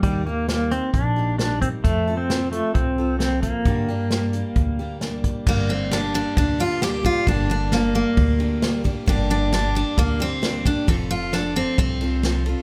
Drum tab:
CC |--------|--------|--------|x-------|
RD |--------|--------|--------|-xxxxxxx|
HH |x-xxx-xx|x-xxx-xx|x-xxx-xx|--------|
SD |--o---o-|--o---o-|--o---o-|--o---o-|
BD |o---o--o|o---o--o|o---o--o|o---o--o|

CC |--------|--------|--------|
RD |xxxxxxxx|xxxxxxxx|xxxxxxxx|
HH |--------|--------|--------|
SD |--o---o-|--o---o-|--o---o-|
BD |o---o--o|o---o--o|o---o---|